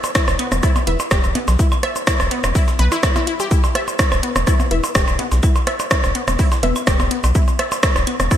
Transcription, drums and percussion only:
0.04 cabasa, percussion blips
0.15 kick, cross-stick, snare, closed hi-hat, cabasa
0.28 cross-stick, snare, cabasa, percussion blips
0.39 closed hi-hat, claves
0.52 cross-stick, closed hi-hat, percussion blips, cabasa
0.63 kick, cross-stick, closed hi-hat, cabasa
0.76 percussion blips, cabasa
0.87 closed hi-hat
1.00 cabasa, percussion blips
1.11 kick, cross-stick, snare, closed hi-hat, cabasa
1.24 cabasa, percussion blips
1.35 closed hi-hat, percussion blips
1.48 snare, cabasa, percussion blips
1.59 kick, closed hi-hat, cabasa
1.72 cabasa, claves, percussion blips
1.83 cross-stick, closed hi-hat
1.96 cabasa, percussion blips
2.07 kick, cross-stick, snare, closed hi-hat, cabasa
2.20 cross-stick, snare, cabasa, percussion blips
2.31 closed hi-hat
2.44 cross-stick, closed hi-hat, percussion blips, cabasa
2.55 kick, open hi-hat, cabasa
2.68 snare, cabasa, percussion blips
2.79 closed hi-hat, percussion blips
2.92 cabasa, percussion blips
3.03 kick, cross-stick, snare, closed hi-hat, cabasa, claves
3.16 snare, percussion blips, cabasa
3.27 closed hi-hat
3.40 cabasa, percussion blips
3.51 kick, closed hi-hat, cabasa
3.64 cabasa, percussion blips
3.75 cross-stick, closed hi-hat
3.88 cabasa, percussion blips
3.99 kick, cross-stick, snare, closed hi-hat, cabasa
4.12 cross-stick, snare, cabasa, claves, percussion blips
4.23 closed hi-hat
4.36 cross-stick, closed hi-hat, percussion blips, cabasa
4.47 kick, cross-stick, closed hi-hat, cabasa
4.60 percussion blips, cabasa
4.71 closed hi-hat
4.84 cabasa, percussion blips
4.95 kick, cross-stick, snare, closed hi-hat, cabasa
5.08 cabasa, percussion blips
5.19 closed hi-hat, percussion blips
5.32 snare, cabasa, percussion blips
5.43 kick, closed hi-hat, cabasa, claves
5.56 cabasa, percussion blips
5.67 cross-stick, closed hi-hat
5.80 cabasa, percussion blips
5.91 kick, cross-stick, snare, closed hi-hat, cabasa
6.04 cross-stick, snare, cabasa, percussion blips
6.15 closed hi-hat
6.28 cross-stick, closed hi-hat, percussion blips, cabasa
6.39 kick, open hi-hat, cabasa
6.52 snare, cabasa, percussion blips
6.63 closed hi-hat, percussion blips
6.76 cabasa, claves, percussion blips
6.87 kick, cross-stick, snare, closed hi-hat, cabasa
7.00 snare, percussion blips, cabasa
7.11 closed hi-hat
7.24 cabasa, percussion blips
7.35 kick, closed hi-hat, cabasa
7.48 cabasa, percussion blips
7.59 cross-stick, closed hi-hat
7.72 cabasa, percussion blips
7.83 kick, cross-stick, snare, closed hi-hat, cabasa
7.96 cross-stick, snare, cabasa, percussion blips
8.07 closed hi-hat, claves
8.20 cross-stick, closed hi-hat, percussion blips, cabasa
8.31 kick, cross-stick, closed hi-hat, cabasa

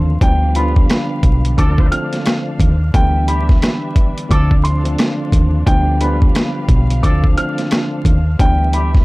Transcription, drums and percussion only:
0.21 kick, closed hi-hat
0.55 closed hi-hat
0.76 kick
0.90 cross-stick, snare, closed hi-hat
1.23 kick, closed hi-hat
1.45 closed hi-hat
1.58 kick, closed hi-hat
1.78 kick
1.92 closed hi-hat
2.13 snare, closed hi-hat
2.26 cross-stick, snare, closed hi-hat
2.60 kick, closed hi-hat
2.94 kick, closed hi-hat
3.28 closed hi-hat
3.49 kick, snare
3.62 cross-stick, snare, closed hi-hat
3.96 kick, closed hi-hat
4.18 closed hi-hat
4.31 kick, closed hi-hat
4.51 kick
4.65 closed hi-hat
4.85 closed hi-hat
4.98 cross-stick, snare, closed hi-hat
5.32 kick, closed hi-hat
5.67 kick, closed hi-hat
6.01 closed hi-hat
6.22 kick
6.35 cross-stick, snare, closed hi-hat
6.69 kick, closed hi-hat
6.90 closed hi-hat
7.03 kick, closed hi-hat
7.24 kick
7.38 closed hi-hat
7.58 snare, closed hi-hat
7.71 cross-stick, snare, closed hi-hat
8.05 kick, closed hi-hat
8.39 kick, closed hi-hat
8.73 closed hi-hat
8.95 kick, snare

